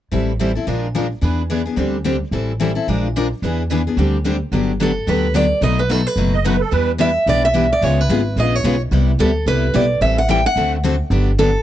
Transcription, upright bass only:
0.12 0.56 A1 medium
0.67 1.11 A#1 medium
1.22 1.66 E2 medium
1.77 2.21 D2 medium
2.31 2.76 A1 medium
2.88 3.32 A#1 medium
3.42 3.86 E2 medium
3.97 4.41 D2 medium
4.52 4.96 G1 medium
5.07 5.51 D2 medium
5.61 6.05 B1 medium
6.16 6.60 F#1 medium
6.72 7.16 E2 medium
7.26 7.71 B1 medium
7.81 8.04 C#2 medium
8.09 8.33 G#1 medium
8.36 8.60 A#1 medium
8.64 8.87 B1 medium
8.91 9.14 C2 medium
9.19 9.43 D2 medium
9.46 9.70 C2 medium
9.74 9.97 B1 medium
10.01 10.45 A1 medium
10.56 11.00 D2 medium
11.10 11.55 G1 medium

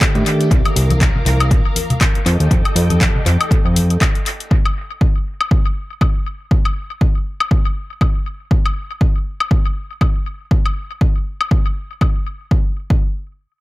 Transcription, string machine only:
0.00 0.49 A4 medium
0.00 0.49 G5 medium
0.00 0.49 D6 medium
0.51 2.24 A#4 medium
0.51 2.24 F5 medium
0.51 2.24 D6 medium
2.26 4.49 A4 medium
2.26 4.49 D#5 medium
2.26 4.49 G5 medium
2.26 4.49 D6 medium

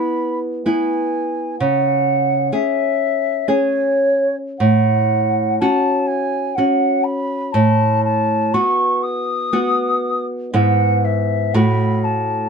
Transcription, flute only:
0.00 0.39 B5 medium
0.65 1.55 G#5 medium
1.59 2.50 F#5 medium
2.52 3.49 E5 medium
3.48 4.35 C#5 medium
4.59 5.58 F#5 medium
5.59 6.08 A5 medium
6.06 6.57 G#5 medium
6.55 7.05 F#5 medium
7.03 7.54 B5 medium
7.52 8.03 A5 medium
8.04 8.55 A5 medium
8.53 9.04 C#6 medium
9.02 10.25 D#6 medium
10.53 11.06 F#5 medium
11.04 11.56 E5 medium
11.54 12.05 B5 medium
12.04 12.49 A5 medium

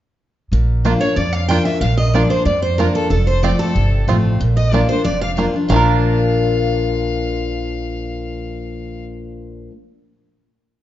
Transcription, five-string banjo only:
0.85 0.92 A#3 medium
0.85 0.92 D4 medium
0.85 0.92 F4 medium
1.50 1.57 A#3 medium
1.50 1.57 D4 medium
1.50 1.57 F4 medium
2.15 2.21 A#3 medium
2.15 2.22 D4 medium
2.15 2.22 F4 medium
2.79 2.86 A#3 medium
2.79 2.86 D4 medium
2.79 2.87 F4 medium
3.44 3.51 C4 medium
3.44 3.51 F4 medium
4.09 4.16 C4 medium
4.09 4.16 F4 medium
4.74 4.80 A#3 medium
4.74 4.81 D4 medium
4.74 4.81 F4 medium
5.38 5.45 A#3 medium
5.38 5.45 D4 medium
5.38 5.45 F4 medium
5.70 9.67 A#3 medium
5.70 9.69 D4 medium
5.74 9.71 F4 medium
5.74 9.73 A#4 medium

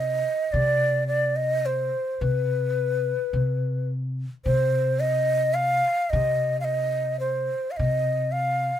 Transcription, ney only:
0.00 0.54 D#5 medium
0.52 1.07 D5 medium
1.07 1.38 D5 medium
1.36 1.67 D#5 medium
1.66 2.23 C5 medium
2.21 3.88 B4 medium
4.45 5.01 C5 loud
5.00 5.56 D#5 medium
5.54 6.11 F5 medium
6.10 6.59 D#5 loud
6.61 7.19 D#5 medium
6.61 6.66 F5 medium
7.20 7.73 C5 medium
7.71 7.78 F5 medium
7.77 8.33 D#5 medium
8.32 8.80 F5 medium

